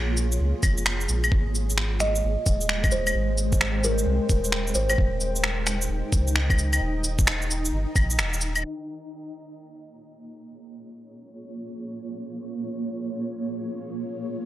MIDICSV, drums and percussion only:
0, 0, Header, 1, 2, 480
1, 0, Start_track
1, 0, Tempo, 458015
1, 1379, Time_signature, 4, 2, 24, 8
1, 15148, End_track
2, 0, Start_track
2, 0, Title_t, "Drums"
2, 179, Note_on_c, 9, 69, 70
2, 284, Note_off_c, 9, 69, 0
2, 333, Note_on_c, 9, 82, 55
2, 438, Note_off_c, 9, 82, 0
2, 660, Note_on_c, 9, 36, 106
2, 660, Note_on_c, 9, 69, 69
2, 660, Note_on_c, 9, 75, 54
2, 660, Note_on_c, 9, 82, 28
2, 764, Note_off_c, 9, 36, 0
2, 765, Note_off_c, 9, 69, 0
2, 765, Note_off_c, 9, 75, 0
2, 765, Note_off_c, 9, 82, 0
2, 811, Note_on_c, 9, 82, 52
2, 899, Note_on_c, 9, 26, 107
2, 916, Note_off_c, 9, 82, 0
2, 1004, Note_off_c, 9, 26, 0
2, 1054, Note_on_c, 9, 82, 42
2, 1139, Note_on_c, 9, 69, 72
2, 1159, Note_off_c, 9, 82, 0
2, 1244, Note_off_c, 9, 69, 0
2, 1297, Note_on_c, 9, 75, 59
2, 1297, Note_on_c, 9, 82, 51
2, 1381, Note_on_c, 9, 36, 119
2, 1402, Note_off_c, 9, 75, 0
2, 1402, Note_off_c, 9, 82, 0
2, 1485, Note_off_c, 9, 36, 0
2, 1624, Note_on_c, 9, 69, 69
2, 1729, Note_off_c, 9, 69, 0
2, 1779, Note_on_c, 9, 82, 50
2, 1861, Note_on_c, 9, 26, 104
2, 1884, Note_off_c, 9, 82, 0
2, 1966, Note_off_c, 9, 26, 0
2, 2099, Note_on_c, 9, 26, 58
2, 2099, Note_on_c, 9, 69, 74
2, 2203, Note_off_c, 9, 26, 0
2, 2203, Note_off_c, 9, 69, 0
2, 2256, Note_on_c, 9, 82, 54
2, 2361, Note_off_c, 9, 82, 0
2, 2581, Note_on_c, 9, 36, 103
2, 2581, Note_on_c, 9, 69, 70
2, 2581, Note_on_c, 9, 82, 29
2, 2686, Note_off_c, 9, 36, 0
2, 2686, Note_off_c, 9, 69, 0
2, 2686, Note_off_c, 9, 82, 0
2, 2733, Note_on_c, 9, 82, 54
2, 2821, Note_on_c, 9, 26, 102
2, 2838, Note_off_c, 9, 82, 0
2, 2926, Note_off_c, 9, 26, 0
2, 2975, Note_on_c, 9, 36, 107
2, 2975, Note_on_c, 9, 75, 58
2, 2975, Note_on_c, 9, 82, 41
2, 3055, Note_on_c, 9, 69, 74
2, 3079, Note_off_c, 9, 36, 0
2, 3080, Note_off_c, 9, 75, 0
2, 3080, Note_off_c, 9, 82, 0
2, 3160, Note_off_c, 9, 69, 0
2, 3215, Note_on_c, 9, 75, 61
2, 3215, Note_on_c, 9, 82, 51
2, 3320, Note_off_c, 9, 75, 0
2, 3320, Note_off_c, 9, 82, 0
2, 3540, Note_on_c, 9, 69, 73
2, 3644, Note_off_c, 9, 69, 0
2, 3693, Note_on_c, 9, 82, 52
2, 3695, Note_on_c, 9, 36, 102
2, 3782, Note_on_c, 9, 26, 105
2, 3798, Note_off_c, 9, 82, 0
2, 3799, Note_off_c, 9, 36, 0
2, 3886, Note_off_c, 9, 26, 0
2, 4023, Note_on_c, 9, 69, 77
2, 4127, Note_off_c, 9, 69, 0
2, 4175, Note_on_c, 9, 82, 53
2, 4280, Note_off_c, 9, 82, 0
2, 4501, Note_on_c, 9, 36, 98
2, 4502, Note_on_c, 9, 69, 70
2, 4502, Note_on_c, 9, 82, 30
2, 4605, Note_off_c, 9, 36, 0
2, 4606, Note_off_c, 9, 69, 0
2, 4606, Note_off_c, 9, 82, 0
2, 4656, Note_on_c, 9, 82, 53
2, 4741, Note_on_c, 9, 26, 100
2, 4761, Note_off_c, 9, 82, 0
2, 4846, Note_off_c, 9, 26, 0
2, 4896, Note_on_c, 9, 82, 40
2, 4974, Note_on_c, 9, 69, 76
2, 5001, Note_off_c, 9, 82, 0
2, 5079, Note_off_c, 9, 69, 0
2, 5130, Note_on_c, 9, 75, 61
2, 5130, Note_on_c, 9, 82, 51
2, 5221, Note_on_c, 9, 36, 109
2, 5235, Note_off_c, 9, 75, 0
2, 5235, Note_off_c, 9, 82, 0
2, 5326, Note_off_c, 9, 36, 0
2, 5456, Note_on_c, 9, 69, 70
2, 5560, Note_off_c, 9, 69, 0
2, 5614, Note_on_c, 9, 82, 52
2, 5697, Note_on_c, 9, 26, 102
2, 5719, Note_off_c, 9, 82, 0
2, 5801, Note_off_c, 9, 26, 0
2, 5939, Note_on_c, 9, 26, 57
2, 5939, Note_on_c, 9, 69, 74
2, 6043, Note_off_c, 9, 26, 0
2, 6043, Note_off_c, 9, 69, 0
2, 6095, Note_on_c, 9, 82, 55
2, 6200, Note_off_c, 9, 82, 0
2, 6419, Note_on_c, 9, 36, 97
2, 6422, Note_on_c, 9, 69, 74
2, 6422, Note_on_c, 9, 82, 29
2, 6524, Note_off_c, 9, 36, 0
2, 6527, Note_off_c, 9, 69, 0
2, 6527, Note_off_c, 9, 82, 0
2, 6575, Note_on_c, 9, 82, 53
2, 6661, Note_on_c, 9, 26, 96
2, 6680, Note_off_c, 9, 82, 0
2, 6766, Note_off_c, 9, 26, 0
2, 6812, Note_on_c, 9, 36, 104
2, 6816, Note_on_c, 9, 75, 65
2, 6816, Note_on_c, 9, 82, 42
2, 6901, Note_on_c, 9, 69, 81
2, 6916, Note_off_c, 9, 36, 0
2, 6920, Note_off_c, 9, 75, 0
2, 6920, Note_off_c, 9, 82, 0
2, 7006, Note_off_c, 9, 69, 0
2, 7053, Note_on_c, 9, 75, 62
2, 7053, Note_on_c, 9, 82, 54
2, 7158, Note_off_c, 9, 75, 0
2, 7158, Note_off_c, 9, 82, 0
2, 7378, Note_on_c, 9, 69, 69
2, 7483, Note_off_c, 9, 69, 0
2, 7532, Note_on_c, 9, 36, 103
2, 7533, Note_on_c, 9, 82, 53
2, 7621, Note_on_c, 9, 26, 105
2, 7637, Note_off_c, 9, 36, 0
2, 7638, Note_off_c, 9, 82, 0
2, 7726, Note_off_c, 9, 26, 0
2, 7776, Note_on_c, 9, 82, 31
2, 7868, Note_on_c, 9, 69, 76
2, 7880, Note_off_c, 9, 82, 0
2, 7973, Note_off_c, 9, 69, 0
2, 8019, Note_on_c, 9, 82, 60
2, 8124, Note_off_c, 9, 82, 0
2, 8338, Note_on_c, 9, 36, 102
2, 8341, Note_on_c, 9, 69, 75
2, 8341, Note_on_c, 9, 75, 62
2, 8341, Note_on_c, 9, 82, 30
2, 8443, Note_off_c, 9, 36, 0
2, 8446, Note_off_c, 9, 69, 0
2, 8446, Note_off_c, 9, 75, 0
2, 8446, Note_off_c, 9, 82, 0
2, 8491, Note_on_c, 9, 82, 54
2, 8581, Note_on_c, 9, 26, 104
2, 8581, Note_on_c, 9, 69, 44
2, 8596, Note_off_c, 9, 82, 0
2, 8685, Note_off_c, 9, 26, 0
2, 8685, Note_off_c, 9, 69, 0
2, 8735, Note_on_c, 9, 82, 46
2, 8815, Note_on_c, 9, 69, 81
2, 8840, Note_off_c, 9, 82, 0
2, 8920, Note_off_c, 9, 69, 0
2, 8966, Note_on_c, 9, 75, 64
2, 8966, Note_on_c, 9, 82, 52
2, 9071, Note_off_c, 9, 75, 0
2, 9071, Note_off_c, 9, 82, 0
2, 15148, End_track
0, 0, End_of_file